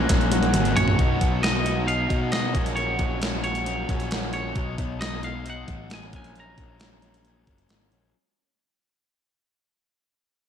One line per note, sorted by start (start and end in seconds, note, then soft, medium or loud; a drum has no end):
0.00 0.54 F#3 medium
0.00 0.55 A#3 medium
0.00 0.55 C#4 medium
0.00 0.97 C#4 medium
0.00 0.32 F#4 medium
0.00 0.97 F#4 medium
0.00 0.97 A#4 medium
0.00 0.95 F#5 medium
0.09 0.51 A#1 loud
0.09 0.98 A#3 medium
0.09 kick loud
0.09 snare medium
0.09 closed hi-hat loud
0.21 closed hi-hat medium
0.32 0.77 F#4 medium
0.32 closed hi-hat medium
0.32 high tom medium
0.43 closed hi-hat soft
0.43 high tom medium
0.54 0.74 G#1 medium
0.54 0.96 A#2 medium
0.54 0.77 F#3 medium
0.54 0.76 A#3 medium
0.54 0.74 C#4 medium
0.54 closed hi-hat loud
0.54 mid tom medium
0.65 closed hi-hat soft
0.76 0.96 A#1 medium
0.76 0.96 F#3 medium
0.76 0.97 A#3 medium
0.76 0.97 C#4 medium
0.76 0.99 F#4 medium
0.76 1.18 C#5 loud
0.76 closed hi-hat medium
0.76 floor tom loud
0.88 floor tom medium
0.97 1.20 B1 medium
0.97 1.42 B2 medium
0.97 1.41 F#3 medium
0.97 1.21 B3 medium
0.97 1.20 D#4 medium
0.97 1.20 F#4 loud
0.97 kick loud
0.97 closed hi-hat medium
1.20 2.06 B1 medium
1.20 1.41 B3 medium
1.20 1.42 D#4 medium
1.20 1.43 F#4 medium
1.20 kick medium
1.20 closed hi-hat medium
1.42 1.65 F#3 medium
1.42 1.64 B3 medium
1.42 1.63 D#4 medium
1.42 1.63 F#4 medium
1.42 1.87 D#5 medium
1.42 snare loud
1.42 closed hi-hat medium
1.64 2.10 B2 medium
1.64 1.86 F#3 medium
1.64 1.85 B3 medium
1.64 1.86 D#4 medium
1.64 1.88 F#4 medium
1.64 closed hi-hat medium
1.86 2.10 F#3 medium
1.86 2.08 B3 medium
1.86 2.08 D#4 medium
1.86 2.08 F#4 medium
1.86 2.29 F5 loud
1.86 closed hi-hat medium
2.08 2.56 B2 medium
2.08 2.54 B2 medium
2.08 2.31 F#3 medium
2.08 2.31 B3 medium
2.08 2.32 D#4 medium
2.08 2.33 F#4 medium
2.08 kick medium
2.08 closed hi-hat medium
2.32 2.54 F#3 medium
2.32 2.53 B3 medium
2.32 2.52 D#4 medium
2.32 5.84 F#4 medium
2.32 2.75 D#5 medium
2.32 snare loud
2.32 closed hi-hat medium
2.53 2.97 A#1 medium
2.53 2.74 A#2 medium
2.53 2.76 F#3 medium
2.53 2.75 A#3 medium
2.53 2.76 C#4 medium
2.53 2.79 F#4 medium
2.53 kick loud
2.53 closed hi-hat medium
2.66 closed hi-hat medium
2.75 3.19 A#2 medium
2.75 2.99 F#3 medium
2.75 2.97 A#3 loud
2.75 2.97 C#4 medium
2.75 3.39 C#5 medium
2.75 closed hi-hat medium
2.80 3.22 F#4 loud
2.98 3.85 A#1 medium
2.98 3.20 F#3 medium
2.98 3.21 A#3 medium
2.98 3.21 C#4 medium
2.98 kick medium
2.98 closed hi-hat medium
3.20 3.43 A#2 medium
3.20 3.44 F#3 medium
3.20 3.42 A#3 medium
3.20 3.41 C#4 medium
3.20 3.89 F#4 loud
3.20 snare loud
3.20 closed hi-hat medium
3.42 3.64 A#2 medium
3.42 3.65 F#3 medium
3.42 3.66 A#3 medium
3.42 3.66 C#4 medium
3.42 4.32 C#5 medium
3.42 closed hi-hat medium
3.55 closed hi-hat medium
3.65 3.89 A#2 medium
3.65 3.90 F#3 medium
3.65 3.88 A#3 medium
3.65 3.87 C#4 medium
3.65 closed hi-hat medium
3.88 4.52 A#1 medium
3.88 4.10 A#2 medium
3.88 4.11 F#3 medium
3.88 4.11 A#3 medium
3.88 4.12 C#4 medium
3.88 4.13 F#4 medium
3.88 kick medium
3.88 closed hi-hat medium
4.00 closed hi-hat medium
4.11 4.54 A#2 medium
4.11 4.35 F#3 medium
4.11 4.32 A#3 medium
4.11 4.32 C#4 medium
4.11 4.33 F#4 medium
4.11 snare medium
4.11 closed hi-hat medium
4.23 snare soft
4.33 4.56 F#3 medium
4.33 4.55 A#3 medium
4.33 4.54 C#4 medium
4.33 4.55 F#4 medium
4.33 4.75 C#5 medium
4.33 closed hi-hat medium
4.55 4.77 B1 medium
4.55 4.99 B2 medium
4.55 4.80 F#3 medium
4.55 4.78 B3 medium
4.55 4.77 D#4 medium
4.55 kick loud
4.55 closed hi-hat medium
4.78 5.64 B1 medium
4.78 5.00 F#3 medium
4.78 5.00 B3 medium
4.78 5.01 D#4 medium
4.78 kick medium
4.78 closed hi-hat medium
5.00 5.24 B2 medium
5.00 5.24 F#3 medium
5.00 5.23 B3 medium
5.00 5.22 D#4 medium
5.00 5.24 D#5 medium
5.00 snare loud
5.00 closed hi-hat medium
5.23 5.44 B2 medium
5.23 5.45 F#3 medium
5.23 5.45 B3 medium
5.23 5.46 D#4 medium
5.23 5.47 F5 medium
5.23 closed hi-hat medium
5.45 5.69 B2 medium
5.45 5.69 F#3 medium
5.45 5.67 B3 medium
5.45 5.66 D#4 medium
5.45 closed hi-hat medium
5.50 5.93 F#5 medium
5.67 6.13 A1 medium
5.67 5.89 B2 medium
5.67 5.90 F#3 medium
5.67 5.91 B3 medium
5.67 5.90 D#4 medium
5.67 kick medium
5.67 closed hi-hat medium
5.90 6.11 B2 medium
5.90 6.15 F#3 medium
5.90 6.12 B3 medium
5.90 6.12 D#4 medium
5.90 6.15 G#5 medium
5.90 snare medium
5.90 closed hi-hat medium
6.03 snare soft
6.13 6.55 A#1 medium
6.13 6.34 A#2 medium
6.13 6.35 F#3 medium
6.13 6.36 A#3 medium
6.13 6.36 C#4 medium
6.13 6.35 G#5 medium
6.13 kick loud
6.13 closed hi-hat medium
6.24 closed hi-hat medium
6.35 6.80 A#2 medium
6.35 6.60 F#3 medium
6.35 6.58 A#3 medium
6.35 6.57 C#4 medium
6.35 closed hi-hat medium
6.40 7.90 A#5 medium
6.58 7.43 A#1 medium
6.58 6.80 F#3 medium
6.58 6.81 A#3 medium
6.58 6.82 C#4 medium
6.58 kick medium
6.58 closed hi-hat medium
6.80 7.03 A#2 medium
6.80 7.03 F#3 medium
6.80 7.02 A#3 medium
6.80 7.01 C#4 medium
6.80 snare loud
6.80 closed hi-hat medium
7.02 7.23 A#2 medium
7.02 7.24 F#3 medium
7.02 7.25 A#3 medium
7.02 7.25 C#4 medium
7.02 closed hi-hat medium
7.14 closed hi-hat medium
7.24 7.48 A#2 medium
7.24 7.47 F#3 medium
7.24 7.46 A#3 medium
7.24 7.46 C#4 medium
7.24 closed hi-hat medium
7.47 7.67 F#1 medium
7.47 7.68 A#2 medium
7.47 7.69 F#3 medium
7.47 7.70 A#3 medium
7.47 7.70 C#4 medium
7.47 kick medium
7.47 closed hi-hat medium
7.58 closed hi-hat medium
7.69 7.89 G#1 medium
7.69 8.13 A#2 medium
7.69 7.93 F#3 medium
7.69 7.92 A#3 medium
7.69 7.91 C#4 medium
7.69 snare medium
7.69 closed hi-hat medium
7.81 snare soft
7.92 8.12 A#1 medium
7.92 8.14 F#3 soft
7.92 8.14 A#3 medium
7.92 8.13 C#4 medium
7.92 closed hi-hat medium